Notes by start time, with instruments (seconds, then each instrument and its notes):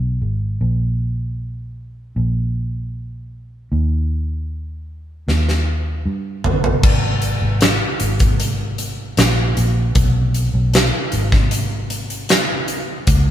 Already playing: fingered electric bass B1
0.22 fingered electric bass G#1
0.61 fingered electric bass A#1
2.16 fingered electric bass A#1
3.72 fingered electric bass D#2
5.28 fingered electric bass D#2, snare
5.49 snare
6.06 fingered electric bass G2
6.44 fingered electric bass G1, floor tom
6.64 floor tom
6.83 fingered electric bass G#1, kick, crash
7.22 closed hi-hat
7.42 fingered electric bass G#1
7.61 snare, closed hi-hat
8.00 fingered electric bass G#1, closed hi-hat
8.20 kick, closed hi-hat
8.40 closed hi-hat
8.78 closed hi-hat
9.17 fingered electric bass A#1, snare, closed hi-hat
9.57 fingered electric bass A#1, closed hi-hat
9.95 fingered electric bass B1, kick, closed hi-hat
10.34 closed hi-hat
10.54 fingered electric bass B1
10.74 snare, closed hi-hat
11.12 fingered electric bass G#1, closed hi-hat
11.32 kick, snare
11.51 closed hi-hat
11.90 closed hi-hat
12.10 closed hi-hat
12.29 snare, closed hi-hat
12.68 closed hi-hat
13.07 fingered electric bass C#2, kick, closed hi-hat